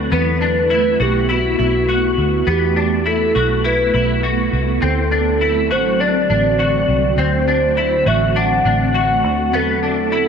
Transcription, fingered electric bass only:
0.00 0.10 D2 medium
0.12 0.96 E2 medium
1.00 1.56 B1 medium
1.59 2.15 B1 medium
2.18 2.46 D2 medium
2.47 3.31 E2 medium
3.35 3.91 B1 medium
3.94 4.50 B1 medium
4.53 4.81 C2 medium
4.82 5.71 D2 medium
5.71 6.27 A1 medium
6.30 6.86 A1 medium
6.88 7.16 C2 medium
7.17 8.02 D2 medium
8.06 8.62 A1 medium
8.65 9.24 A1 medium
9.24 9.53 D2 medium
9.53 10.28 E2 medium

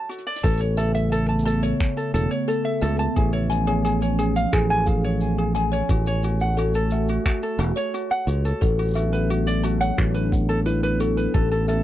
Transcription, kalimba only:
0.44 0.60 A4 medium
0.77 0.87 E5 medium
1.45 1.62 A5 loud
1.63 1.79 C#5 medium
2.48 2.64 A4 medium
2.82 2.92 E5 medium
3.50 3.66 G#5 loud
3.67 3.84 C#5 medium
4.53 4.69 G#4 medium
4.86 4.96 F5 medium
5.55 5.71 G#5 loud
5.72 5.88 C#5 medium
6.57 6.73 A4 medium
6.92 7.02 E5 medium
7.59 7.76 A5 loud
7.76 7.93 C#5 medium
8.61 8.78 A4 medium
8.95 9.05 E5 medium
9.64 9.80 A5 loud
9.81 9.97 C#5 medium
10.49 10.59 A5 medium
10.66 10.76 E4 medium
11.00 11.10 A4 medium
11.34 11.51 A4 medium
11.68 11.78 E5 medium

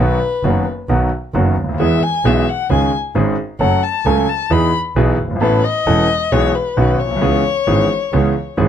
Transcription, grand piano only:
0.00 0.17 B1 medium
0.00 0.17 B2 medium
0.00 0.17 D#3 medium
0.00 0.17 F#3 medium
0.00 0.18 B3 medium
0.00 0.18 F#4 medium
0.44 0.63 F#1 medium
0.44 0.63 F#2 medium
0.44 0.63 D#3 medium
0.44 0.63 F#3 medium
0.44 0.63 B3 medium
0.44 0.63 F#4 medium
0.89 1.08 B1 medium
0.89 1.08 B2 medium
0.89 1.08 D#3 medium
0.89 1.08 F#3 medium
0.89 1.08 B3 medium
0.89 1.08 F#4 medium
1.34 1.54 F#1 medium
1.34 1.54 F#2 medium
1.34 1.54 D#3 medium
1.34 1.54 F#3 medium
1.34 1.54 B3 medium
1.34 1.54 F#4 medium
1.64 1.69 C#2 soft
1.69 1.74 D2 medium
1.74 1.80 D#2 medium
1.79 1.99 E2 medium
1.79 1.99 E3 medium
1.79 1.99 G#3 medium
1.79 1.99 B3 medium
1.79 1.99 G#4 medium
2.25 2.44 B1 medium
2.25 2.44 B2 medium
2.25 2.44 E3 medium
2.25 2.44 G#3 medium
2.25 2.44 B3 medium
2.25 2.44 G#4 medium
2.70 2.89 C#2 medium
2.70 2.89 C#3 medium
2.70 2.89 D#3 medium
2.70 2.89 G#3 medium
2.70 2.89 C#4 medium
2.70 2.89 G#4 medium
3.15 3.34 G#1 medium
3.15 3.35 G#2 medium
3.15 3.34 D#3 medium
3.15 3.34 G#3 medium
3.15 3.34 C#4 medium
3.15 3.35 G#4 medium
3.60 3.80 F#2 medium
3.60 3.80 F#3 medium
3.60 3.80 A3 medium
3.60 3.80 C#4 medium
3.60 3.80 A4 medium
4.06 4.25 C#2 medium
4.06 4.25 C#3 medium
4.06 4.25 F#3 medium
4.06 4.25 A3 medium
4.06 4.25 C#4 medium
4.06 4.25 A4 medium
4.50 4.70 E2 medium
4.50 4.70 E3 medium
4.50 4.70 B3 medium
4.50 4.70 D#4 medium
4.50 4.70 G#4 medium
4.96 5.15 B1 medium
4.96 5.15 B2 medium
4.96 5.15 E3 medium
4.96 5.15 B3 medium
4.96 5.15 D#4 medium
4.96 5.15 G#4 medium
5.25 5.30 F#1 soft
5.30 5.36 G1 medium
5.36 5.42 G#1 medium
5.41 5.60 A1 medium
5.41 5.60 A2 medium
5.41 5.60 E3 medium
5.41 5.60 B3 medium
5.41 5.60 C#4 medium
5.41 5.61 A4 medium
5.86 6.06 E1 medium
5.86 6.06 E2 medium
5.86 6.06 E3 medium
5.86 6.06 B3 medium
5.86 6.06 C#4 medium
5.86 6.06 A4 medium
6.32 6.51 B1 medium
6.32 6.51 B2 medium
6.32 6.51 E3 medium
6.32 6.51 G#3 medium
6.32 6.51 B3 medium
6.32 6.51 G#4 medium
6.77 6.96 B1 medium
6.77 6.96 B2 medium
6.77 6.96 D#3 medium
6.77 6.96 B3 medium
6.77 6.96 C#4 medium
6.77 6.96 F#4 medium
7.05 7.11 A#1 soft
7.11 7.16 B1 medium
7.16 7.22 C2 medium
7.21 7.41 C#2 medium
7.21 7.41 C#3 medium
7.21 7.41 E3 medium
7.21 7.41 B3 medium
7.21 7.41 C#4 medium
7.21 7.41 G#4 medium
7.67 7.86 G#1 medium
7.67 7.86 G#2 medium
7.67 7.86 E3 medium
7.67 7.86 B3 medium
7.67 7.87 C#4 medium
7.67 7.87 G#4 medium
8.13 8.32 C#2 medium
8.13 8.32 C#3 medium
8.13 8.32 E3 medium
8.13 8.32 B3 medium
8.13 8.32 C#4 medium
8.13 8.32 G#4 medium
8.57 8.68 G#1 medium
8.57 8.68 G#2 medium
8.57 8.68 E3 medium
8.57 8.68 B3 medium
8.57 8.68 C#4 medium
8.57 8.68 G#4 medium

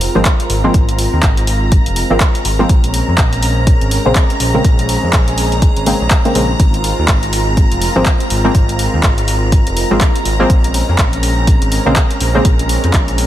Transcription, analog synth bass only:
0.15 0.23 G#1 medium
0.50 0.69 G#1 medium
0.74 1.07 G#1 medium
1.13 1.20 D#2 loud
1.23 1.80 G#1 loud
1.86 2.03 F1 medium
2.11 2.18 G#1 medium
2.45 2.64 G#1 medium
2.69 3.02 A#1 medium
3.08 3.16 F2 loud
3.18 3.75 A#1 medium
3.81 3.98 G#1 medium
4.06 4.13 A#1 medium
4.40 4.59 A#1 medium
4.65 4.97 A#1 medium
5.03 5.11 F2 medium
5.13 5.71 A#1 loud
5.76 5.93 G#1 medium
6.01 6.08 A#1 medium
6.35 6.54 A#1 medium
6.60 6.92 G#1 medium
6.98 7.06 D#2 loud
7.08 7.66 G#1 medium
7.72 7.89 F1 medium
7.96 8.03 G#1 medium
8.30 8.50 G#1 medium
8.55 8.88 G#1 medium
8.94 9.01 D#2 loud
9.03 9.61 G#1 medium
9.67 9.84 F1 medium
9.91 9.98 G#1 medium
10.25 10.45 G#1 medium
10.50 10.83 A#1 medium
10.89 10.96 F2 loud
10.99 11.56 A#1 medium
11.62 11.79 G#1 medium
11.86 11.94 A#1 medium
12.21 12.40 A#1 medium
12.45 12.78 A#1 medium
12.84 12.91 F2 loud
12.94 13.27 A#1 loud

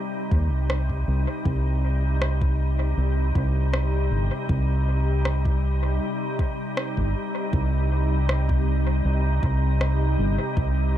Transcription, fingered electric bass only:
0.32 0.52 D#2 medium
0.52 1.04 C2 medium
1.08 1.25 C2 medium
1.45 2.94 C2 medium
2.97 3.31 C2 medium
3.35 4.08 C2 medium
4.11 4.29 G1 medium
4.49 5.98 C2 medium
6.97 7.13 G1 medium
7.53 9.02 C2 medium
9.05 9.39 C2 medium
9.43 10.15 C2 medium
10.19 10.37 G1 loud
10.57 10.98 C2 loud

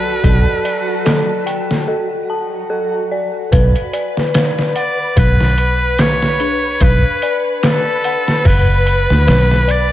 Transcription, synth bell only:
0.00 0.24 A4 loud
0.00 0.22 D5 medium
0.00 1.46 G5 medium
0.00 2.30 A5 medium
0.24 0.46 A4 medium
0.65 1.04 D5 medium
1.05 1.45 A4 medium
1.46 1.69 G5 medium
1.88 2.10 A4 medium
2.30 2.69 A5 medium
2.70 3.09 A4 medium
3.11 3.51 D5 medium
3.52 3.74 B4 loud
3.93 4.33 D5 medium
4.35 4.74 B4 loud
4.76 4.98 F#5 medium
5.16 5.39 B4 loud
5.58 5.97 B5 medium
5.99 6.38 B4 medium
6.40 6.80 D4 medium
6.81 7.03 B4 loud
7.23 7.62 D5 medium
7.64 8.03 B4 medium
8.05 8.27 F#5 medium
8.45 8.67 B4 medium
8.86 9.26 B5 medium
9.27 9.67 B4 loud
9.68 9.92 D5 medium

